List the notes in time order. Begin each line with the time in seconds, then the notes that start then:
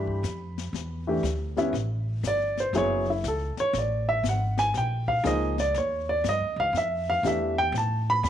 Already playing: G2 E3 A3 D4 G4 B5
0.08 kick
0.23 F2, snare, hi-hat pedal
0.58 snare
0.73 E2, brush sweep, snare
1.07 E3 A3 D4 G4
1.23 D2, snare, hi-hat pedal
1.57 G3 B3 C#4 E4, snare
1.73 A1, brush sweep, snare
2.23 G1, snare, hi-hat pedal
2.27 D5
2.57 C5, snare
2.73 F#1 F#3 B3 E4 G#4, brush sweep, snare
2.78 C#5
3.10 E4
3.24 C#2, snare, hi-hat pedal
3.28 A4
3.57 C#5, muted upright bass stroke, snare
3.73 A1, brush sweep, snare
3.78 D5
4.09 E5
4.23 G#1, snare, hi-hat pedal
4.29 F#5
4.58 G#5, snare
4.74 A#1 G5, brush sweep, snare
5.08 F5, kick
5.23 C#2 F3 A#3 D#4 G#4 D#5, snare, hi-hat pedal
5.58 D5, snare
5.74 D#2 C#5, brush sweep, snare
6.09 D5
6.24 G2, snare, hi-hat pedal
6.29 D#5
6.40 D#2
6.56 C#2 F5
6.73 F2, brush sweep, snare
6.78 E5
7.10 F5
7.23 E2 E3 A3 D4 G4, snare, hi-hat pedal
7.27 E5
7.58 G5
7.72 A2, brush sweep, snare
7.78 A5
8.10 B5
8.23 E2 B5, snare, hi-hat pedal